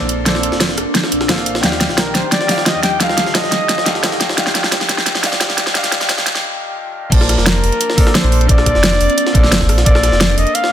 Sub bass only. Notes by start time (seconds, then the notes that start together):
0.01 A#1
0.26 A#1
0.52 F1
0.78 F1
1.12 A#1
1.29 F1
1.38 F1
1.46 A#1
1.63 D#2
1.89 A#1
2.15 A#1
2.75 D#2
3.00 D#2
3.27 A#1
3.52 A#1
3.86 D#2
4.04 A#1
4.12 A#1
4.21 D#2
4.38 D#2
4.64 A#1
4.89 A#1
5.49 D#2
5.75 D#2
6.01 A#1
6.26 A#1
7.12 A#1
7.38 F1
7.63 F1
8.24 A#1
8.49 A#1
8.75 F1
9.01 F1
9.35 A#1
9.52 F1
9.61 F1
9.69 A#1
9.86 A#1
10.12 F1
10.38 F1